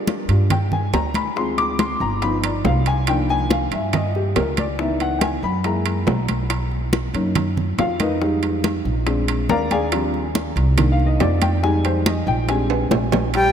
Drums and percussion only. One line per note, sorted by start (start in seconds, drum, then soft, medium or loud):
0.07 high bongo medium
0.07 high conga medium
0.07 high timbale medium
0.07 low timbale medium
0.29 high conga soft
0.29 high timbale medium
0.50 high bongo medium
0.50 high conga soft
0.50 low conga medium
0.50 high timbale medium
0.72 high conga soft
0.72 low conga medium
0.93 high bongo medium
0.93 low bongo medium
0.93 high conga soft
0.93 high timbale medium
0.93 low timbale medium
1.14 high conga medium
1.14 high timbale medium
1.36 high bongo medium
1.36 high conga soft
1.58 high bongo soft
1.58 high conga soft
1.58 high timbale medium
1.79 high bongo medium
1.79 high conga medium
1.79 high timbale medium
1.79 low timbale medium
2.01 high conga soft
2.22 high bongo medium
2.22 high conga soft
2.22 high timbale medium
2.44 high bongo soft
2.44 high conga soft
2.44 high timbale loud
2.65 high bongo medium
2.65 low bongo medium
2.65 high conga medium
2.65 low timbale medium
2.86 high bongo soft
2.86 high timbale medium
3.07 high bongo medium
3.07 high conga soft
3.07 high timbale loud
3.30 high conga soft
3.50 high bongo medium
3.50 high conga medium
3.50 high timbale medium
3.50 low timbale medium
3.72 high conga soft
3.72 high timbale medium
3.93 high bongo medium
3.93 high conga soft
3.93 low conga medium
3.93 high timbale medium
4.15 high conga soft
4.36 high bongo medium
4.36 low bongo medium
4.36 high conga soft
4.36 high timbale medium
4.36 low timbale medium
4.57 high conga medium
4.57 high timbale loud
4.79 high bongo medium
4.79 high conga soft
5.00 high bongo soft
5.00 high conga soft
5.00 high timbale medium
5.21 high bongo medium
5.21 high conga medium
5.21 high timbale medium
5.21 low timbale medium
5.43 high conga soft
5.64 high bongo medium
5.64 high conga soft
5.64 high timbale medium
5.86 high bongo soft
5.86 high conga soft
5.86 high timbale medium
6.07 high bongo medium
6.07 low bongo medium
6.07 high conga medium
6.07 low timbale medium
6.29 high bongo soft
6.29 high conga medium
6.29 high timbale medium
6.50 high bongo medium
6.50 high conga soft
6.50 high timbale medium
6.72 high conga soft
6.93 high bongo medium
6.93 high conga loud
6.93 high timbale medium
6.93 low timbale medium
7.15 high conga soft
7.15 high timbale medium
7.35 high bongo medium
7.35 high conga soft
7.35 low conga medium
7.35 high timbale medium
7.57 high conga soft
7.57 low conga medium
7.79 high bongo medium
7.79 low bongo medium
7.79 high conga soft
7.79 high timbale medium
7.79 low timbale medium
8.00 high conga medium
8.00 high timbale medium
8.22 high bongo medium
8.22 high conga soft
8.43 high bongo soft
8.43 high conga soft
8.43 high timbale medium
8.64 high bongo medium
8.64 high conga medium
8.64 high timbale medium
8.64 low timbale medium
8.85 high conga soft
9.07 high bongo medium
9.07 high conga soft
9.07 high timbale medium
9.28 high bongo soft
9.28 high conga soft
9.28 high timbale medium
9.49 high bongo medium
9.49 low bongo medium
9.49 high conga medium
9.49 low timbale medium
9.71 high bongo soft
9.71 high conga medium
9.71 high timbale medium
9.92 high bongo medium
9.92 high conga soft
9.92 high timbale medium
10.14 high conga soft
10.35 high bongo medium
10.35 high conga loud
10.35 high timbale medium
10.35 low timbale medium
10.57 high conga soft
10.57 high timbale medium
10.78 high bongo medium
10.78 high conga soft
10.78 low conga medium
10.78 high timbale medium
11.00 high conga soft
11.20 high bongo medium
11.20 low bongo medium
11.20 high conga soft
11.20 high timbale medium
11.20 low timbale medium
11.42 high conga medium
11.42 high timbale medium
11.64 high bongo medium
11.64 high conga soft
11.85 high bongo soft
11.85 high conga soft
11.85 high timbale medium
12.06 high bongo medium
12.06 high conga loud
12.06 high timbale medium
12.06 low timbale medium
12.27 high conga soft
12.49 high bongo medium
12.49 high conga soft
12.49 high timbale medium
12.70 high bongo soft
12.70 high conga soft
12.70 high timbale medium
12.91 high bongo medium
12.91 high conga medium
12.91 low timbale loud
13.12 low bongo loud
13.12 high conga medium
13.12 low timbale loud
13.34 high bongo medium
13.34 high conga soft
13.34 high timbale medium